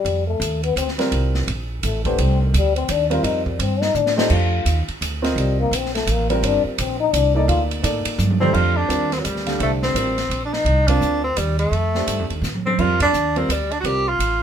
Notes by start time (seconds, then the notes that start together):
Already playing: G3
0.05 F2, ride
0.27 A3
0.40 D#2, hi-hat pedal, ride
0.63 B3, ride
0.76 D2 C4, hi-hat pedal, ride
0.88 snare
0.98 G3 C4 F4 A#4, snare, ride
1.12 C2, ride
1.35 snare
1.47 A#1, ride
1.83 A1 A3, hi-hat pedal, ride
2.05 A3 B3 D4 G4 C5, kick, ride
2.18 C2 C4, ride
2.42 D#3
2.54 D2 G3, hi-hat pedal, ride
2.76 C4, ride
2.88 D#2 D4, hi-hat pedal, ride
3.10 G3 C4 F4 A#4, ride
3.23 F2 D#4, ride
3.45 G3, kick
3.59 G2 C4, ride
3.81 D#4, snare
3.95 A2 D4, hi-hat pedal, mid tom
4.06 snare
4.16 A3 D4 D#4 G4 C5, snare
4.30 F2 F4, kick, crash
4.65 D#2, hi-hat pedal, ride
4.88 muted upright bass stroke, ride
5.01 D2, hi-hat pedal, ride
5.22 C4 F4 A#4 D#5, snare, ride
5.36 C2 G3, ride
5.60 A#3
5.71 A#1, hi-hat pedal, ride
5.76 C4
5.86 snare
5.95 A3, snare, ride
6.07 A1, hi-hat pedal, ride
6.11 A#3
6.30 G3 C4 F4 A#4, ride
6.42 G1 D4, ride
6.65 G3, muted upright bass stroke
6.78 A#1 C4, hi-hat pedal, ride
7.00 D#4
7.13 C2 D4, hi-hat pedal, ride
7.34 A#3 D#4 A4 D5
7.48 D2 F4, ride
7.71 ride
7.82 A2 A#3 D#4 A4 D5, hi-hat pedal, ride
8.05 muted upright bass stroke, ride
8.18 G2, hi-hat pedal, high tom
8.30 high tom
8.40 F2 A3 C4 D4 G4 C5, mid tom
8.54 F2 F4, kick, crash
8.76 D4
8.88 D#2 G3 C4 F4 A#4, hi-hat pedal, ride
9.12 C4, snare, ride
9.19 F#3
9.25 D2 G3, hi-hat pedal, ride
9.36 snare
9.45 D3 A3 G4 F5, snare, ride
9.59 C2 A3 D4 G4 C5, ride
9.82 C4, snare
9.94 A1 G3 C4 F4 A#4, hi-hat pedal, ride
10.18 snare, ride
10.29 A#1, ride
10.45 D4
10.53 D#4, snare
10.65 C2, ride
10.88 C4 D4 F4 A#4 F5, kick, ride
11.01 D2, hi-hat pedal
11.24 C4
11.37 D#2 G3, hi-hat pedal, ride
11.59 A3, ride
11.71 F2, ride
11.95 A3 D4 G4 C5, snare
12.07 G2, hi-hat pedal, ride
12.19 F2
12.30 D#2, ride
12.42 A2, snare, hi-hat pedal
12.55 high tom
12.66 C4, high tom
12.79 F2 G3 C4 F4 A#4, kick, crash
13.00 D4, kick, ride
13.13 D#2, hi-hat pedal
13.36 G3 C4 F4 A#4, ride
13.49 D2 G3, hi-hat pedal, ride
13.71 D4, ride
13.80 C2 G3 F#4
13.84 C4 F4 G4 A#4, ride
14.08 F4
14.19 A1, hi-hat pedal, ride